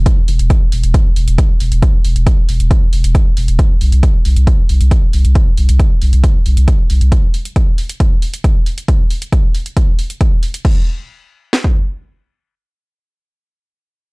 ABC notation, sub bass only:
X:1
M:4/4
L:1/16
Q:1/4=136
K:Clyd
V:1 name="Sub bass" clef=bass
z2 E,,, E,,, z2 E,,, E,,, z2 E,,, E,,, z2 E,,, E,,, | z2 E,,, E,,, z2 E,,, E,,, z2 E,,, E,,, z2 E,,, E,,, | z2 C,, C,, z2 C,, C,, z2 C,, C,, z2 C,, C,, | z2 C,, C,, z2 C,, C,, z2 C,, C,, z2 C,, C,, |
z16 | z16 | z16 | z16 |]